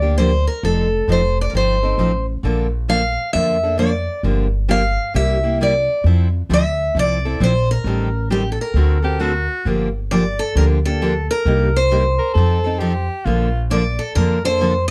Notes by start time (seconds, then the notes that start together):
Already playing: D2 D5
0.02 A#3 D4 G4
0.18 D3 F3 A#3 D4 G4 C5
0.47 A#4
0.63 F1 F3 C4 D#4 A4
1.08 F1 F3 C4 D#4 A4
1.12 C5
1.41 D5
1.50 G1 A#4
1.54 F3 C4 D#4 A4 C5
1.83 C4 D#4 A4
1.98 A1 F3 C4 D#4 A4
2.43 A#1 D3 F3 A#3 D4 A4
2.88 D3 F3 A#3 D4 A4 F5
3.33 F2 D3 F3 A#3 D4 A4 E5
3.63 A#3 D4 A4
3.78 D3 F3 A#3 D4 A4 D5
4.23 G1 D3 F3 A#3 D4 G4
4.68 D3 F3 A#3 D4 G4 F5
5.14 C2 C3 G3 A#3 E4 G4 E5
5.43 A#3 E4 G4
5.61 C3 G3 A#3 E4 G4 D5
6.04 F2 F3 C4 E4 A4
6.49 D2 F3 C4 E4 A4
6.53 E5
6.95 C2 F3 C4 E4 A4
6.99 D5
7.25 C4 E4 A4
7.40 A#1 F3 C4 E4 A4 C5
7.71 A#4
7.84 A1 D#3 G3 C4 G4 A4
8.30 D#3 G3 C4 G4 A4
8.52 A4
8.61 A#4
8.74 D2 D3 A3 C4 F#4 A4
9.02 C4 F#4 G4 A4
9.19 D3 A3 C4 F#4 A4
9.65 G1 D3 F3 A#3 D4 G4
10.11 D3 F3 A#3 D4 G4 D5
10.39 A4
10.55 D2 D3 F3 A#3 D4 G4 A#4
10.85 A#3 D4 G4 A4
11.02 D3 F3 A#3 D4 G4
11.31 A#4
11.45 C2 C3 G3 A#3 D#4 G4
11.76 C5
11.91 C3 G3 A#3 D#4 G4
12.19 A#4
12.34 F2 F3 C4 D#4 A4
12.64 C4 D#4 A4
12.79 F3 C4 D#4 G4 A4
13.25 A#1 D3 F3 A#3 D4 F4 A4
13.70 D3 F3 A#3 D4 A4 D5
13.99 A4
14.15 F2 D3 F3 A#3 D4 A4 A#4
14.45 A#3 D4 A4 C5
14.61 D3 F3 A#3 D4 A4